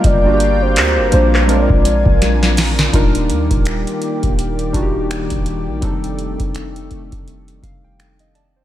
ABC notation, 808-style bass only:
X:1
M:4/4
L:1/16
Q:"Swing 16ths" 1/4=83
K:Eb
V:1 name="808-style bass" clef=bass
G,,,4 D,, G,,, B,,,3 B,,,2 B,,,4- B,,, | E,,,2 E,, E,,,2 z2 E,,,3 E,,,3 E,,,2 B,,, | F,,,3 F,,,3 F,,, F,,,3 F,,,6 |]